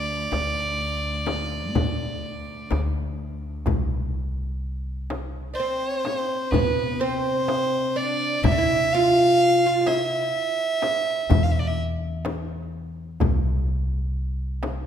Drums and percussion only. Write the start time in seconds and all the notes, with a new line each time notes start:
0.32 darbuka tek, frame drum
0.81 darbuka ka
1.26 darbuka tek, frame drum
1.75 darbuka dum, frame drum
2.24 darbuka ka
2.71 darbuka tek, frame drum
3.19 darbuka ka
3.66 darbuka dum, frame drum
4.15 darbuka ka
5.10 darbuka tek, frame drum
5.58 darbuka ka
6.05 darbuka tek, frame drum
6.52 darbuka dum, frame drum
7.48 darbuka tek, frame drum
8.44 frame drum, darbuka dum
8.92 darbuka ka
9.86 darbuka tek, frame drum
10.34 darbuka ka
10.82 darbuka tek, frame drum
11.30 darbuka dum, frame drum
12.25 darbuka tek, frame drum
13.20 darbuka dum, frame drum
13.68 darbuka ka
14.63 darbuka tek, frame drum